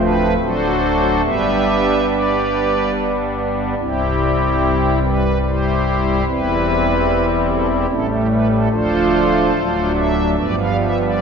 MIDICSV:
0, 0, Header, 1, 2, 480
1, 0, Start_track
1, 0, Key_signature, 0, "major"
1, 0, Tempo, 845070
1, 701, Time_signature, 3, 2, 24, 8
1, 2147, Tempo, 823045
1, 5507, Tempo, 846262
1, 6456, End_track
2, 0, Start_track
2, 0, Title_t, "Pipe organ"
2, 0, Program_c, 0, 19
2, 0, Note_on_c, 0, 26, 83
2, 0, Note_on_c, 0, 38, 89
2, 0, Note_on_c, 0, 53, 79
2, 0, Note_on_c, 0, 57, 72
2, 0, Note_on_c, 0, 60, 76
2, 0, Note_on_c, 0, 71, 127
2, 191, Note_off_c, 0, 71, 0
2, 205, Note_off_c, 0, 60, 0
2, 206, Note_off_c, 0, 26, 0
2, 206, Note_off_c, 0, 38, 0
2, 206, Note_off_c, 0, 53, 0
2, 206, Note_off_c, 0, 57, 0
2, 229, Note_on_c, 0, 72, 117
2, 230, Note_on_c, 0, 54, 61
2, 230, Note_on_c, 0, 62, 69
2, 231, Note_on_c, 0, 26, 81
2, 231, Note_on_c, 0, 66, 91
2, 232, Note_on_c, 0, 57, 67
2, 232, Note_on_c, 0, 69, 87
2, 234, Note_on_c, 0, 38, 83
2, 689, Note_off_c, 0, 72, 0
2, 690, Note_off_c, 0, 26, 0
2, 690, Note_off_c, 0, 54, 0
2, 690, Note_off_c, 0, 62, 0
2, 690, Note_off_c, 0, 66, 0
2, 691, Note_off_c, 0, 57, 0
2, 691, Note_off_c, 0, 69, 0
2, 692, Note_off_c, 0, 38, 0
2, 701, Note_on_c, 0, 76, 118
2, 702, Note_on_c, 0, 43, 81
2, 703, Note_on_c, 0, 31, 76
2, 703, Note_on_c, 0, 55, 68
2, 703, Note_on_c, 0, 59, 64
2, 703, Note_on_c, 0, 67, 101
2, 705, Note_on_c, 0, 71, 99
2, 706, Note_on_c, 0, 62, 64
2, 1170, Note_off_c, 0, 76, 0
2, 1171, Note_off_c, 0, 67, 0
2, 1172, Note_off_c, 0, 71, 0
2, 1192, Note_on_c, 0, 67, 63
2, 1192, Note_on_c, 0, 71, 58
2, 1193, Note_on_c, 0, 74, 81
2, 1654, Note_off_c, 0, 71, 0
2, 1655, Note_off_c, 0, 67, 0
2, 1655, Note_off_c, 0, 74, 0
2, 2126, Note_off_c, 0, 31, 0
2, 2126, Note_off_c, 0, 43, 0
2, 2126, Note_off_c, 0, 55, 0
2, 2126, Note_off_c, 0, 59, 0
2, 2128, Note_off_c, 0, 62, 0
2, 2143, Note_on_c, 0, 24, 75
2, 2145, Note_on_c, 0, 36, 77
2, 2145, Note_on_c, 0, 67, 112
2, 2146, Note_on_c, 0, 55, 63
2, 2147, Note_on_c, 0, 60, 82
2, 2147, Note_on_c, 0, 64, 89
2, 2851, Note_off_c, 0, 67, 0
2, 2852, Note_off_c, 0, 60, 0
2, 2852, Note_off_c, 0, 64, 0
2, 2878, Note_on_c, 0, 71, 109
2, 3081, Note_off_c, 0, 71, 0
2, 3121, Note_on_c, 0, 72, 96
2, 3122, Note_on_c, 0, 64, 71
2, 3123, Note_on_c, 0, 67, 69
2, 3571, Note_off_c, 0, 24, 0
2, 3572, Note_off_c, 0, 36, 0
2, 3573, Note_off_c, 0, 55, 0
2, 3585, Note_off_c, 0, 64, 0
2, 3585, Note_off_c, 0, 72, 0
2, 3586, Note_off_c, 0, 67, 0
2, 3597, Note_on_c, 0, 64, 69
2, 3598, Note_on_c, 0, 28, 79
2, 3599, Note_on_c, 0, 60, 69
2, 3600, Note_on_c, 0, 40, 78
2, 3600, Note_on_c, 0, 71, 124
2, 3601, Note_on_c, 0, 55, 67
2, 4176, Note_off_c, 0, 71, 0
2, 4194, Note_on_c, 0, 67, 108
2, 4294, Note_off_c, 0, 67, 0
2, 4314, Note_on_c, 0, 69, 119
2, 4414, Note_off_c, 0, 69, 0
2, 4429, Note_on_c, 0, 67, 98
2, 4525, Note_off_c, 0, 28, 0
2, 4525, Note_off_c, 0, 64, 0
2, 4526, Note_off_c, 0, 40, 0
2, 4526, Note_off_c, 0, 60, 0
2, 4527, Note_off_c, 0, 55, 0
2, 4530, Note_off_c, 0, 67, 0
2, 4540, Note_on_c, 0, 57, 65
2, 4542, Note_on_c, 0, 33, 79
2, 4542, Note_on_c, 0, 45, 84
2, 4543, Note_on_c, 0, 55, 71
2, 4544, Note_on_c, 0, 69, 127
2, 4546, Note_on_c, 0, 61, 92
2, 4546, Note_on_c, 0, 64, 89
2, 4647, Note_off_c, 0, 69, 0
2, 4648, Note_off_c, 0, 61, 0
2, 4648, Note_off_c, 0, 64, 0
2, 4661, Note_on_c, 0, 67, 100
2, 4764, Note_off_c, 0, 67, 0
2, 4783, Note_on_c, 0, 71, 115
2, 4885, Note_off_c, 0, 71, 0
2, 4905, Note_on_c, 0, 69, 108
2, 5006, Note_off_c, 0, 33, 0
2, 5006, Note_off_c, 0, 45, 0
2, 5006, Note_off_c, 0, 57, 0
2, 5006, Note_off_c, 0, 69, 0
2, 5007, Note_off_c, 0, 55, 0
2, 5020, Note_on_c, 0, 69, 101
2, 5021, Note_on_c, 0, 38, 82
2, 5021, Note_on_c, 0, 53, 71
2, 5021, Note_on_c, 0, 62, 66
2, 5022, Note_on_c, 0, 26, 82
2, 5023, Note_on_c, 0, 57, 75
2, 5023, Note_on_c, 0, 72, 124
2, 5024, Note_on_c, 0, 65, 100
2, 5490, Note_off_c, 0, 38, 0
2, 5490, Note_off_c, 0, 53, 0
2, 5490, Note_off_c, 0, 62, 0
2, 5491, Note_off_c, 0, 26, 0
2, 5491, Note_off_c, 0, 57, 0
2, 5509, Note_on_c, 0, 54, 64
2, 5513, Note_on_c, 0, 57, 66
2, 5514, Note_on_c, 0, 26, 81
2, 5515, Note_on_c, 0, 38, 77
2, 5515, Note_on_c, 0, 62, 65
2, 5720, Note_off_c, 0, 69, 0
2, 5721, Note_off_c, 0, 72, 0
2, 5722, Note_off_c, 0, 65, 0
2, 5735, Note_on_c, 0, 76, 119
2, 5940, Note_off_c, 0, 76, 0
2, 5968, Note_off_c, 0, 54, 0
2, 5970, Note_off_c, 0, 26, 0
2, 5970, Note_off_c, 0, 57, 0
2, 5971, Note_off_c, 0, 38, 0
2, 5971, Note_off_c, 0, 62, 0
2, 5973, Note_on_c, 0, 53, 61
2, 5975, Note_on_c, 0, 31, 74
2, 5975, Note_on_c, 0, 59, 60
2, 5975, Note_on_c, 0, 74, 97
2, 5976, Note_on_c, 0, 55, 60
2, 5978, Note_on_c, 0, 71, 72
2, 5979, Note_on_c, 0, 43, 77
2, 5979, Note_on_c, 0, 67, 67
2, 6079, Note_off_c, 0, 74, 0
2, 6081, Note_off_c, 0, 71, 0
2, 6082, Note_off_c, 0, 67, 0
2, 6098, Note_on_c, 0, 77, 96
2, 6202, Note_off_c, 0, 77, 0
2, 6221, Note_on_c, 0, 76, 111
2, 6325, Note_off_c, 0, 76, 0
2, 6345, Note_on_c, 0, 74, 92
2, 6448, Note_off_c, 0, 53, 0
2, 6449, Note_off_c, 0, 31, 0
2, 6449, Note_off_c, 0, 55, 0
2, 6449, Note_off_c, 0, 59, 0
2, 6449, Note_off_c, 0, 74, 0
2, 6451, Note_off_c, 0, 43, 0
2, 6456, End_track
0, 0, End_of_file